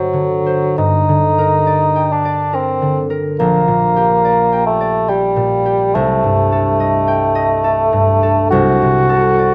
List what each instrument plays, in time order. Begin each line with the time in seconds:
Already playing: harp G2 D3 C5 D5 F#5, bassoon F#3
0.13 harp D3
0.46 harp C5
0.78 harp G2, bassoon D#4
1.09 harp D3
1.38 harp A#4
1.67 harp D5
1.96 harp G5
2.12 bassoon D4
2.25 harp D5
2.53 bassoon C4, harp A#4
2.82 harp D3
3.10 harp A#4
3.40 harp A#1, bassoon A#3
3.68 harp A#2
3.96 harp G4
4.25 harp D5
4.52 harp G5
4.66 bassoon A3
4.81 harp D5
5.08 bassoon G3, harp G4
5.36 harp A#2
5.66 harp G4
5.95 harp C2, bassoon A3
6.24 harp G2
6.52 harp A4
6.80 harp D#5
7.08 harp G5
7.35 harp D#5
7.64 harp A4
7.93 harp G2
8.23 harp A4
8.50 harp C2, bassoon F#4
8.82 harp C3
9.09 harp A4
9.39 harp D5